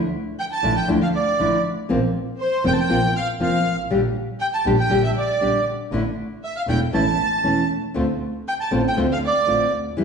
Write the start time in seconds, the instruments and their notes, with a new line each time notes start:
0.39 violin section G5, bandoneon G5
0.51 violin section A5, bandoneon A5
0.63 double bass A1, nylon-string guitar D3 F3 A3 D4 E4
0.76 violin section G5, bandoneon G5
0.88 double bass D2, nylon-string guitar D3 F3 A3 D4 E4
1.01 violin section F5, bandoneon F5
1.12 violin section D5, bandoneon D5
1.39 double bass A1, nylon-string guitar D3 F3 A3 D4 E4
1.89 double bass A#1, nylon-string guitar F3 A#3 C4 F4
2.40 violin section C5, bandoneon C5
2.64 double bass F1, nylon-string guitar F3 A#3 C4 F4, violin section G5, bandoneon G5
2.73 violin section A5, bandoneon A5
2.80 violin section G5, bandoneon G5
2.89 double bass A#1, nylon-string guitar F3 A#3 C4 F4
3.16 violin section F5, bandoneon F5
3.40 double bass F1, nylon-string guitar F3 A#3 C4 F4, violin section F5, bandoneon F5
3.66 double bass G#1
3.90 double bass A#1, nylon-string guitar D3 G3 D4 G4
4.41 violin section G5, bandoneon G5
4.53 violin section A5, bandoneon A5
4.66 double bass A#1, nylon-string guitar D3 G3 D4 G4
4.78 violin section G5, bandoneon G5
4.90 double bass A#1, nylon-string guitar D3 G3 D4 G4
5.04 violin section E5, bandoneon E5
5.16 violin section D5, bandoneon D5
5.41 double bass A#1, nylon-string guitar D3 G3 D4 G4
5.92 double bass A1, nylon-string guitar D3 A3 D4 E4
6.43 violin section E5, bandoneon E5
6.56 violin section F5, bandoneon F5
6.67 double bass E1, nylon-string guitar D3 A3 D4 E4, violin section G5, bandoneon G5
6.93 double bass A1, nylon-string guitar E3 A3 C#4 E4, violin section A5, bandoneon A5
7.43 double bass E1, nylon-string guitar E3 A3 C#4 E4
7.94 double bass D2, nylon-string guitar D3 A3 C4 F4
8.48 violin section G5, bandoneon G5
8.60 bandoneon A5, violin section A5
8.71 double bass A1, nylon-string guitar D3 A3 C4 F4
8.88 violin section G5, bandoneon G5
8.97 double bass D2, nylon-string guitar D3 A3 C4 F4
9.12 violin section F5, bandoneon F5
9.26 violin section D5, bandoneon D5
9.47 double bass A1, nylon-string guitar D3 A3 C4 F4
9.73 double bass D2
9.97 double bass E2, nylon-string guitar E3 G3 E4